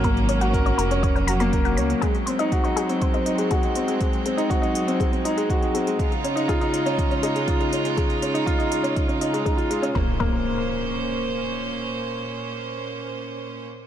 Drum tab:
HH |xxxxxxxxxxxxxxxx|xxxxxxxxxxxxxxxx|xxxxxxxxxxxxxxxx|xxxxxxxxxxxxxxxx|
BD |o---o---o---o---|o---o---o---o---|o---o---o---o---|o---o---o---o---|

HH |xxxxxxxxxxxxxxxx|----------------|----------------|
BD |o---o---o---o---|o-o-------------|----------------|